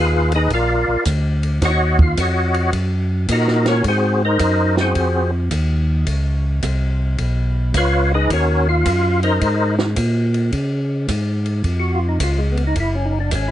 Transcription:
0.00 0.49 D#2 medium
0.00 0.33 F4 medium
0.00 0.33 G#4 medium
0.00 0.33 B4 medium
0.00 0.32 F5 loud
0.32 0.52 G#4 medium
0.32 0.51 D#5 loud
0.32 ride soft
0.36 0.52 D#4 medium
0.36 0.52 B4 medium
0.50 0.85 A#1 medium
0.50 1.04 F4 medium
0.50 1.04 F5 loud
0.50 kick soft
0.50 ride medium
0.54 1.04 A#4 medium
0.54 1.04 D5 medium
0.88 0.97 A#1 soft
1.05 1.60 D2 loud
1.05 kick soft
1.05 hi-hat pedal medium
1.05 ride medium
1.43 ride soft
1.62 2.16 D#2 medium
1.62 2.00 F#4 medium
1.62 2.00 C#5 medium
1.62 2.00 D#5 medium
1.62 2.00 F#5 loud
1.62 kick soft
1.62 snare soft
1.62 ride medium
1.99 2.19 F4 medium
1.99 2.19 F5 medium
1.99 kick medium
2.17 2.72 F2 loud
2.17 2.71 F#4 medium
2.17 2.71 C#5 medium
2.17 2.71 D#5 medium
2.17 2.70 F#5 medium
2.17 kick soft
2.17 hi-hat pedal medium
2.17 ride medium
2.54 ride soft
2.73 3.27 F#2 medium
2.73 kick soft
2.73 ride medium
3.28 3.83 A#2 medium
3.28 3.67 D#4 medium
3.28 3.66 D#5 medium
3.28 kick soft
3.28 hi-hat pedal medium
3.28 ride medium
3.32 3.67 F#4 medium
3.32 3.67 A#4 medium
3.48 snare soft
3.66 3.85 C#4 medium
3.66 3.85 F#4 medium
3.66 3.85 A#4 medium
3.66 3.85 C#5 loud
3.66 snare soft
3.66 ride soft
3.84 4.39 G#2 medium
3.84 4.23 F#4 medium
3.84 kick soft
3.84 ride medium
3.88 4.23 C4 medium
3.88 4.23 G#4 medium
3.88 4.23 C5 medium
4.25 4.75 D#4 medium
4.25 4.76 A#4 medium
4.25 4.76 C5 medium
4.25 4.75 D#5 loud
4.39 4.94 F#2 medium
4.39 kick soft
4.39 hi-hat pedal medium
4.39 ride medium
4.77 5.31 C4 medium
4.77 5.31 F#4 medium
4.77 5.31 G#4 medium
4.77 5.31 C5 medium
4.77 snare soft
4.95 5.50 F2 medium
4.95 kick soft
4.95 ride medium
5.51 6.05 D#2 loud
5.51 kick soft
5.51 hi-hat pedal medium
5.51 ride medium
6.07 6.61 C#2 medium
6.07 kick soft
6.07 ride medium
6.63 7.17 C2 medium
6.63 kick soft
6.63 hi-hat pedal medium
6.63 ride medium
7.18 7.73 B1 loud
7.18 kick soft
7.18 ride medium
7.74 8.28 C#2 loud
7.74 8.12 F4 medium
7.74 8.12 B4 medium
7.74 8.12 C#5 medium
7.74 8.12 F5 loud
7.74 kick soft
7.74 hi-hat pedal medium
7.74 ride medium
8.14 8.31 D#4 medium
8.14 8.31 G#4 medium
8.14 8.31 B4 medium
8.14 8.31 D#5 medium
8.30 8.84 D#2 medium
8.30 8.68 C#4 medium
8.30 8.67 F#4 medium
8.30 8.68 A#4 medium
8.30 8.68 C#5 medium
8.30 kick soft
8.30 ride medium
8.69 9.20 F4 loud
8.69 9.20 F5 loud
8.85 9.40 F#2 medium
8.85 kick soft
8.85 hi-hat pedal medium
8.85 ride medium
9.23 9.76 D#4 medium
9.23 9.75 A#4 medium
9.23 9.75 C5 medium
9.23 9.75 D#5 loud
9.23 ride soft
9.41 9.96 G#2 medium
9.41 kick soft
9.41 ride medium
9.79 snare medium
9.96 10.51 A#2 loud
9.96 kick soft
9.96 hi-hat pedal medium
9.96 ride medium
10.34 ride soft
10.52 11.07 C#3 medium
10.52 kick soft
10.52 ride medium
11.08 11.63 G#2 medium
11.08 kick soft
11.08 hi-hat pedal medium
11.08 ride medium
11.46 ride soft
11.64 12.19 F2 medium
11.64 kick soft
11.64 ride medium
11.80 12.00 F#4 medium
11.95 12.08 F4 medium
12.09 12.19 D#4 medium
12.20 12.75 C#2 loud
12.20 12.40 F4 medium
12.20 kick soft
12.20 hi-hat pedal medium
12.20 ride medium
12.38 12.57 G#3 soft
12.52 12.64 B3 medium
12.57 ride soft
12.67 12.76 D#4 medium
12.76 13.30 F#1 medium
12.76 kick soft
12.76 ride medium
12.80 12.97 E4 medium
12.95 13.13 C#4 medium
13.05 13.19 D#4 loud
13.20 13.31 D4 medium
13.31 13.51 G#1 medium
13.31 kick soft
13.31 hi-hat pedal medium
13.31 ride medium
13.35 13.51 C#4 medium

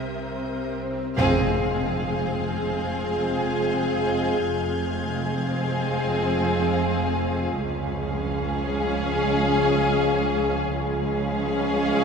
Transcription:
0.00 0.94 C2 soft
0.00 0.94 C3 soft
0.00 0.94 C4 soft
0.00 0.94 A#4 soft
0.00 0.77 E5 soft
0.00 0.74 D#6 soft
0.00 0.74 G6 soft
0.00 swell soft
1.17 4.36 F1 medium
1.17 2.35 F2 medium
1.17 4.37 F2 medium
1.17 4.36 F3 medium
1.17 4.36 G#3 medium
1.17 4.36 C4 medium
1.17 4.37 C4 medium
1.17 4.37 G#4 medium
1.17 4.37 F5 medium
1.17 7.15 F6 soft
1.17 impact medium
2.00 7.16 G6 soft
2.82 7.17 G#6 soft
4.40 7.55 F1 medium
4.40 7.55 F2 medium
4.40 7.41 F3 medium
4.40 7.41 G#3 medium
4.40 7.55 C4 medium
4.40 7.55 G#4 medium
4.40 7.55 F5 medium
7.58 10.69 C#2 medium
7.58 10.70 C#2 medium
7.58 10.69 F3 medium
7.58 10.70 G#3 medium
7.58 10.70 C#4 medium
7.58 10.57 C#4 medium
7.58 10.70 G#4 medium
7.58 10.57 G#4 medium
7.58 10.70 F5 medium
10.73 12.04 C#2 medium
10.73 12.04 F3 medium
10.73 12.04 G#3 medium
10.73 12.04 C#4 medium
10.73 12.04 G#4 medium
10.73 12.04 F5 medium

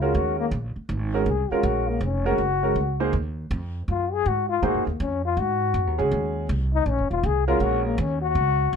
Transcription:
0.00 0.13 C#2 medium
0.00 0.49 G#3 medium
0.00 0.49 C#4 medium
0.00 0.17 F4 medium
0.00 0.50 F#4 medium
0.00 0.50 A#4 medium
0.15 0.51 D#2 medium
0.15 0.39 F#4 loud
0.39 0.47 A#3 medium
0.51 0.74 A#1 loud
0.76 muted upright bass stroke soft
0.89 1.25 G#1 medium
1.14 1.25 G#3 medium
1.14 1.26 C#4 medium
1.14 1.26 F#4 medium
1.14 1.26 A#4 medium
1.26 1.49 C2 medium
1.26 1.53 G#4 medium
1.51 1.99 G#3 medium
1.51 1.99 C#4 medium
1.51 1.67 F4 medium
1.51 1.99 F#4 medium
1.51 1.99 A#4 medium
1.51 muted upright bass stroke soft
1.63 2.00 A#1 medium
1.63 1.90 F#4 loud
1.89 2.05 A#3 medium
2.01 2.37 F1 loud
2.01 2.28 C#4 medium
2.25 2.37 G#3 medium
2.25 2.37 C#4 medium
2.25 2.38 F#4 medium
2.25 3.14 F#4 loud
2.25 2.38 A#4 medium
2.38 2.75 F#1 medium
2.63 2.75 G#3 medium
2.63 2.75 C#4 medium
2.63 2.75 F#4 medium
2.63 2.75 A#4 medium
2.76 3.12 C#2 medium
3.00 3.12 A#3 medium
3.00 3.12 D#4 medium
3.00 3.12 G#4 medium
3.00 3.12 C5 medium
3.13 3.49 D#2 medium
3.51 3.87 F2 loud
3.88 4.24 F#2 medium
3.88 4.15 F4 loud
4.13 4.30 G#4 loud
4.26 4.62 G#2 medium
4.26 4.48 F#4 loud
4.49 4.66 F4 loud
4.62 4.76 A#2 medium
4.62 4.84 A#3 medium
4.62 4.84 D#4 medium
4.62 4.87 F#4 loud
4.62 4.84 G#4 medium
4.62 4.84 C5 medium
4.74 4.86 F#2 medium
4.87 4.99 D#2 medium
4.87 5.02 A#3 medium
5.00 5.36 F2 loud
5.00 5.25 C#4 medium
5.25 5.41 F4 loud
5.37 5.73 G#2 medium
5.37 6.13 F#4 loud
5.74 5.87 F#2 medium
5.87 5.99 D#2 medium
5.98 6.11 C#2 medium
5.98 6.46 G#3 medium
5.98 6.46 C#4 medium
5.98 6.46 F#4 medium
5.98 6.46 G#4 medium
6.11 6.48 D#2 medium
6.49 6.85 C2 loud
6.74 6.91 D#4 loud
6.86 7.00 A#1 medium
6.86 7.10 C#4 loud
6.99 7.10 F#1 medium
7.11 7.22 D#1 medium
7.11 7.27 F4 loud
7.23 7.60 C2 medium
7.23 7.47 G#4 loud
7.48 7.95 G#3 medium
7.48 7.95 C#4 medium
7.48 7.63 F4 loud
7.48 7.95 F#4 medium
7.48 7.96 A#4 medium
7.60 7.97 A#1 medium
7.60 7.85 F#4 loud
7.85 8.01 A#3 medium
7.98 8.34 D#2 loud
7.98 8.21 C#4 medium
8.22 8.76 F#4 loud
8.35 8.71 C#2 medium
8.73 8.76 A#1 medium

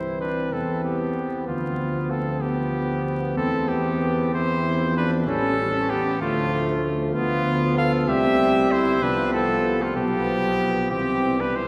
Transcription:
0.00 0.48 C2 medium
0.00 1.43 E3 medium
0.00 1.49 C4 medium
0.00 0.23 E4 medium
0.00 0.16 C5 medium
0.21 0.52 D4 medium
0.21 0.54 B4 medium
0.52 1.49 E2 medium
0.52 0.83 C4 medium
0.52 0.83 A4 medium
0.84 1.46 B3 medium
0.84 1.46 G4 medium
1.47 3.36 D2 medium
1.47 2.41 F3 medium
1.47 2.12 B3 medium
1.47 2.26 B3 medium
1.47 2.12 F4 medium
2.10 2.42 C4 medium
2.10 2.43 A4 medium
2.41 3.38 F3 medium
2.41 3.35 B3 medium
2.41 3.39 B3 medium
2.41 3.36 G4 medium
3.36 5.28 E2 medium
3.36 4.34 E3 medium
3.36 3.68 C4 medium
3.36 4.33 C4 medium
3.36 3.70 A4 medium
3.68 4.36 B3 medium
3.68 4.33 G4 medium
4.34 4.81 E3 medium
4.34 5.26 C4 medium
4.34 4.96 E4 medium
4.34 4.96 C5 loud
4.82 5.29 F3 medium
4.96 5.26 D4 medium
4.96 5.11 B4 medium
5.27 5.94 A1 medium
5.27 5.94 G3 medium
5.27 5.91 C#4 medium
5.27 5.93 C#4 medium
5.27 5.91 A4 loud
5.89 6.22 B3 medium
5.89 6.21 G4 loud
6.21 7.11 D2 medium
6.21 7.12 F3 medium
6.21 6.88 A3 medium
6.21 7.16 A3 medium
6.21 6.87 F4 loud
7.14 8.10 D2 medium
7.14 8.11 F3 medium
7.14 8.10 B3 medium
7.14 7.73 B3 medium
7.14 7.74 F4 loud
7.78 8.09 A4 medium
7.78 7.92 F5 loud
8.08 9.01 C2 medium
8.08 9.04 G3 medium
8.08 9.01 C4 medium
8.08 8.70 G4 loud
8.08 8.73 E5 loud
8.71 9.01 E4 medium
8.71 9.04 C5 loud
9.01 9.94 C2 medium
9.01 9.96 F3 medium
9.01 9.94 B3 medium
9.01 9.33 D4 medium
9.01 9.32 B4 loud
9.33 9.79 C4 loud
9.33 9.84 A4 loud
9.80 9.87 A3 medium
9.80 9.96 F4 medium
9.95 10.90 B1 medium
9.95 10.93 F3 medium
9.95 10.92 B3 medium
9.95 10.90 B3 medium
9.95 10.90 G4 loud
10.91 11.68 C2 medium
10.91 11.68 E3 medium
10.91 11.41 C4 medium
10.91 11.42 G4 loud
11.39 11.68 B3 medium
11.39 11.57 D4 medium
11.39 11.58 B4 medium
11.55 11.68 E4 medium
11.55 11.68 C5 medium

